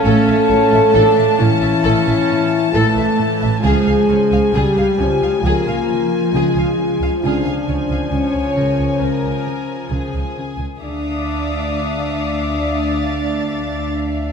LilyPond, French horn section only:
\new Staff \with { instrumentName = "French horn section" } { \time 4/4 \key d \minor \tempo 4 = 67 r4. e'4. a'4 | gis'4 g'4 eis'2 | d'4 cis'2 r4 | d'1 | }